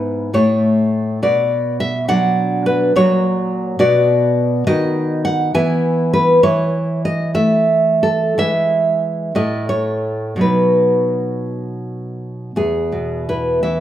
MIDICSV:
0, 0, Header, 1, 2, 480
1, 0, Start_track
1, 0, Tempo, 587084
1, 1005, Time_signature, 6, 3, 24, 8
1, 1480, Tempo, 569801
1, 3400, Tempo, 590551
1, 5800, Tempo, 659341
1, 7720, Tempo, 720288
1, 9640, Tempo, 692042
1, 10500, End_track
2, 0, Start_track
2, 0, Title_t, "Nylon-string guitar"
2, 0, Program_c, 0, 24
2, 0, Note_on_c, 0, 44, 77
2, 0, Note_on_c, 0, 59, 58
2, 0, Note_on_c, 0, 64, 53
2, 0, Note_on_c, 0, 71, 97
2, 251, Note_off_c, 0, 59, 0
2, 251, Note_off_c, 0, 64, 0
2, 253, Note_off_c, 0, 71, 0
2, 259, Note_off_c, 0, 44, 0
2, 274, Note_on_c, 0, 57, 58
2, 276, Note_on_c, 0, 64, 66
2, 278, Note_on_c, 0, 45, 81
2, 280, Note_on_c, 0, 73, 105
2, 967, Note_off_c, 0, 64, 0
2, 968, Note_off_c, 0, 57, 0
2, 972, Note_off_c, 0, 73, 0
2, 980, Note_off_c, 0, 45, 0
2, 1002, Note_on_c, 0, 47, 79
2, 1005, Note_on_c, 0, 74, 98
2, 1460, Note_off_c, 0, 74, 0
2, 1473, Note_on_c, 0, 76, 112
2, 1708, Note_off_c, 0, 76, 0
2, 1709, Note_on_c, 0, 54, 70
2, 1712, Note_on_c, 0, 78, 122
2, 1718, Note_on_c, 0, 62, 76
2, 2182, Note_off_c, 0, 78, 0
2, 2196, Note_on_c, 0, 71, 111
2, 2410, Note_off_c, 0, 54, 0
2, 2414, Note_off_c, 0, 62, 0
2, 2415, Note_off_c, 0, 47, 0
2, 2434, Note_off_c, 0, 71, 0
2, 2445, Note_on_c, 0, 46, 85
2, 2447, Note_on_c, 0, 54, 62
2, 2449, Note_on_c, 0, 66, 64
2, 2451, Note_on_c, 0, 73, 107
2, 3123, Note_off_c, 0, 54, 0
2, 3123, Note_off_c, 0, 66, 0
2, 3128, Note_off_c, 0, 73, 0
2, 3136, Note_off_c, 0, 46, 0
2, 3148, Note_on_c, 0, 47, 97
2, 3149, Note_on_c, 0, 59, 67
2, 3151, Note_on_c, 0, 66, 68
2, 3154, Note_on_c, 0, 74, 118
2, 3843, Note_off_c, 0, 59, 0
2, 3845, Note_off_c, 0, 66, 0
2, 3849, Note_off_c, 0, 74, 0
2, 3855, Note_off_c, 0, 47, 0
2, 3869, Note_on_c, 0, 51, 92
2, 3870, Note_on_c, 0, 75, 115
2, 3871, Note_on_c, 0, 66, 66
2, 3875, Note_on_c, 0, 59, 64
2, 4324, Note_off_c, 0, 75, 0
2, 4341, Note_on_c, 0, 78, 120
2, 4549, Note_off_c, 0, 59, 0
2, 4549, Note_off_c, 0, 66, 0
2, 4560, Note_off_c, 0, 51, 0
2, 4572, Note_off_c, 0, 78, 0
2, 4582, Note_on_c, 0, 59, 69
2, 4582, Note_on_c, 0, 64, 67
2, 4585, Note_on_c, 0, 52, 90
2, 4585, Note_on_c, 0, 80, 121
2, 5042, Note_off_c, 0, 80, 0
2, 5063, Note_on_c, 0, 71, 107
2, 5269, Note_off_c, 0, 59, 0
2, 5270, Note_off_c, 0, 64, 0
2, 5283, Note_off_c, 0, 52, 0
2, 5295, Note_off_c, 0, 71, 0
2, 5304, Note_on_c, 0, 73, 108
2, 5305, Note_on_c, 0, 52, 85
2, 5779, Note_off_c, 0, 73, 0
2, 5806, Note_on_c, 0, 75, 106
2, 6019, Note_off_c, 0, 75, 0
2, 6020, Note_on_c, 0, 57, 62
2, 6022, Note_on_c, 0, 76, 105
2, 6023, Note_on_c, 0, 64, 66
2, 6498, Note_off_c, 0, 76, 0
2, 6518, Note_on_c, 0, 69, 106
2, 6744, Note_off_c, 0, 57, 0
2, 6745, Note_off_c, 0, 64, 0
2, 6747, Note_off_c, 0, 52, 0
2, 6764, Note_off_c, 0, 69, 0
2, 6772, Note_on_c, 0, 52, 75
2, 6773, Note_on_c, 0, 56, 57
2, 6775, Note_on_c, 0, 64, 62
2, 6779, Note_on_c, 0, 76, 110
2, 7450, Note_off_c, 0, 56, 0
2, 7450, Note_off_c, 0, 64, 0
2, 7452, Note_off_c, 0, 76, 0
2, 7459, Note_off_c, 0, 52, 0
2, 7480, Note_on_c, 0, 45, 74
2, 7481, Note_on_c, 0, 57, 57
2, 7485, Note_on_c, 0, 75, 93
2, 7486, Note_on_c, 0, 64, 54
2, 7711, Note_off_c, 0, 75, 0
2, 7727, Note_on_c, 0, 73, 90
2, 8173, Note_off_c, 0, 57, 0
2, 8173, Note_on_c, 0, 47, 61
2, 8174, Note_off_c, 0, 64, 0
2, 8179, Note_off_c, 0, 45, 0
2, 8183, Note_on_c, 0, 54, 50
2, 8184, Note_off_c, 0, 73, 0
2, 8194, Note_on_c, 0, 63, 49
2, 8206, Note_on_c, 0, 71, 74
2, 8902, Note_off_c, 0, 71, 0
2, 9601, Note_off_c, 0, 47, 0
2, 9606, Note_off_c, 0, 54, 0
2, 9611, Note_off_c, 0, 63, 0
2, 9640, Note_on_c, 0, 40, 63
2, 9646, Note_on_c, 0, 68, 79
2, 9891, Note_on_c, 0, 47, 53
2, 10112, Note_off_c, 0, 68, 0
2, 10144, Note_on_c, 0, 64, 52
2, 10145, Note_on_c, 0, 71, 76
2, 10367, Note_off_c, 0, 71, 0
2, 10380, Note_on_c, 0, 76, 83
2, 10381, Note_off_c, 0, 47, 0
2, 10384, Note_on_c, 0, 52, 56
2, 10500, Note_off_c, 0, 40, 0
2, 10500, Note_off_c, 0, 52, 0
2, 10500, Note_off_c, 0, 64, 0
2, 10500, Note_off_c, 0, 76, 0
2, 10500, End_track
0, 0, End_of_file